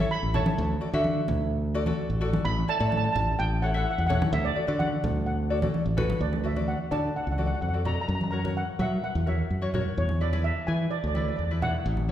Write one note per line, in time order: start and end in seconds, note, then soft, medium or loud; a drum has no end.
0.00 0.21 E4 medium
0.00 0.21 A4 medium
0.00 0.21 C#5 medium
0.00 high conga medium
0.11 0.33 B5 medium
0.23 0.49 A1 medium
0.34 0.58 E4 medium
0.34 0.58 A4 medium
0.34 0.58 C#5 medium
0.34 0.78 A5 medium
0.34 low conga medium
0.46 high conga loud
0.58 0.76 D2 loud
0.81 0.88 F#4 medium
0.81 0.89 A4 medium
0.81 0.89 D5 medium
0.93 1.20 D3 loud
0.93 1.43 F#4 loud
0.93 1.43 A4 medium
0.93 1.43 E5 loud
1.04 high conga medium
1.28 1.91 D2 loud
1.28 low conga medium
1.74 1.82 F#4 medium
1.74 1.82 A4 medium
1.74 1.82 D5 loud
1.86 2.08 F#4 loud
1.86 2.08 A4 medium
1.86 2.08 D5 loud
1.86 high conga medium
2.10 2.36 A1 medium
2.21 2.45 F#4 loud
2.21 2.45 A4 medium
2.21 2.45 D5 medium
2.33 high conga medium
2.45 2.63 A1 loud
2.45 2.69 B5 loud
2.68 2.76 E4 medium
2.68 2.76 A4 medium
2.68 2.76 D5 medium
2.68 2.74 A5 loud
2.75 2.81 A5 medium
2.80 3.07 A2 loud
2.80 3.29 E4 medium
2.80 3.29 A4 medium
2.80 3.30 D5 loud
2.80 2.89 A5 medium
2.90 2.96 A5 medium
2.90 high conga medium
2.97 3.03 A5 medium
3.04 3.11 A5 medium
3.12 3.33 A1 loud
3.12 3.19 A5 medium
3.12 low conga medium
3.20 3.28 A5 medium
3.39 3.84 A1 loud
3.39 3.63 G5 medium
3.62 3.70 E4 medium
3.62 3.70 A4 medium
3.62 3.70 C#5 medium
3.62 3.69 F#5 medium
3.70 3.76 F#5 medium
3.74 3.95 E4 medium
3.74 3.96 A4 medium
3.74 3.96 E5 medium
3.74 3.82 F#5 medium
3.84 3.90 F#5 medium
3.91 3.98 F#5 medium
3.98 4.25 E2 medium
3.98 4.05 F#5 medium
4.07 4.33 E4 medium
4.07 4.33 A4 medium
4.07 4.33 C#5 medium
4.07 4.13 F#5 medium
4.07 low conga medium
4.14 4.22 F#5 medium
4.22 high conga loud
4.33 4.50 D2 loud
4.33 4.45 E5 medium
4.45 4.81 D5 medium
4.56 4.63 F#4 medium
4.56 4.63 A4 medium
4.56 4.63 D5 medium
4.67 4.95 D3 loud
4.67 5.17 F#4 medium
4.67 5.17 A4 medium
4.67 5.17 D5 medium
4.79 5.25 F#5 medium
4.79 high conga medium
5.04 5.66 D2 loud
5.04 low conga medium
5.26 5.93 F#5 medium
5.50 5.57 F#4 medium
5.50 5.58 A4 medium
5.50 5.58 D5 medium
5.62 5.83 F#4 medium
5.62 5.84 A4 medium
5.62 5.84 D5 medium
5.62 high conga medium
5.62 low conga medium
5.74 high conga medium
5.86 6.12 A1 medium
5.97 6.21 F#4 medium
5.97 6.21 A4 medium
5.97 6.21 B4 loud
5.97 low conga medium
6.10 high conga medium
6.20 6.74 D2 medium
6.20 6.45 D5 medium
6.33 high conga medium
6.44 6.51 F#4 medium
6.44 6.51 A4 medium
6.44 6.52 D5 medium
6.44 6.69 E5 medium
6.56 6.77 F#4 medium
6.56 6.77 A4 medium
6.56 6.78 D5 medium
6.56 high conga medium
6.68 6.92 F#5 medium
6.91 7.09 D3 medium
6.91 7.19 F#4 medium
6.91 7.20 A4 medium
6.91 7.20 D5 medium
6.91 7.16 A5 medium
6.91 low conga medium
7.16 7.23 F#5 medium
7.24 7.53 C#2 medium
7.24 7.30 F#5 medium
7.32 7.38 F#5 medium
7.38 7.59 F#4 medium
7.38 7.60 A4 medium
7.38 7.60 D5 medium
7.38 7.45 F#5 medium
7.38 high conga medium
7.47 7.53 F#5 medium
7.54 7.60 F#5 medium
7.61 7.97 F2 medium
7.61 7.68 F#5 medium
7.69 7.76 F#5 medium
7.73 7.81 F#4 medium
7.73 7.81 A4 medium
7.73 7.81 D5 medium
7.85 8.09 F#4 medium
7.85 8.09 A4 medium
7.85 8.09 D5 medium
7.85 7.93 A#5 medium
7.85 low conga medium
7.94 8.00 A#5 medium
8.01 8.07 A#5 medium
8.08 8.62 F#2 medium
8.08 8.14 A#5 medium
8.15 8.23 A#5 medium
8.21 8.29 A#5 medium
8.21 high conga medium
8.31 8.39 F#4 medium
8.31 8.39 A#4 medium
8.31 8.39 C#5 medium
8.31 8.38 A#5 medium
8.39 8.46 A#5 medium
8.44 8.65 F#4 medium
8.44 8.65 A#4 medium
8.44 8.65 C#5 medium
8.44 high conga medium
8.57 8.78 F#5 medium
8.79 8.97 F#3 loud
8.79 9.08 F#4 medium
8.79 9.08 A#4 medium
8.79 9.08 E5 medium
8.79 9.02 F#5 medium
8.79 low conga medium
9.04 9.14 F#5 medium
9.15 9.42 E2 medium
9.26 9.48 F#4 medium
9.26 9.48 A#4 medium
9.26 9.48 C#5 medium
9.26 9.71 E5 medium
9.26 high conga medium
9.50 9.86 F#2 medium
9.61 9.69 F#4 medium
9.61 9.69 A#4 medium
9.61 9.69 C#5 medium
9.74 9.97 F#4 medium
9.74 9.97 A#4 medium
9.74 9.98 C#5 medium
9.74 low conga medium
9.97 10.51 E2 medium
9.97 10.22 C#5 medium
10.09 high conga medium
10.21 10.28 E4 medium
10.21 10.28 G#4 medium
10.21 10.28 B4 medium
10.21 10.45 D5 medium
10.32 10.54 E4 medium
10.32 10.54 G#4 medium
10.32 10.54 B4 medium
10.32 high conga medium
10.44 10.66 E5 medium
10.67 10.86 E3 medium
10.67 10.96 E4 medium
10.67 10.96 G#4 medium
10.67 10.96 B4 medium
10.67 10.92 G#5 medium
10.91 10.98 D5 medium
10.99 11.06 D5 medium
11.04 11.30 D2 medium
11.04 11.13 D5 medium
11.14 11.36 E4 medium
11.14 11.36 G#4 soft
11.14 11.37 B4 medium
11.14 11.20 D5 medium
11.14 high conga medium
11.21 11.27 D5 medium
11.29 11.35 D5 medium
11.36 11.74 E2 medium
11.36 11.43 D5 medium
11.44 11.52 D5 medium
11.51 11.57 E4 medium
11.51 11.58 G#4 soft
11.51 11.58 B4 medium
11.62 11.86 E4 medium
11.62 11.86 G#4 medium
11.62 11.86 D5 medium
11.62 12.12 F#5 medium
11.62 low conga medium
11.86 12.12 A1 loud
11.97 high conga medium
12.08 12.12 E4 medium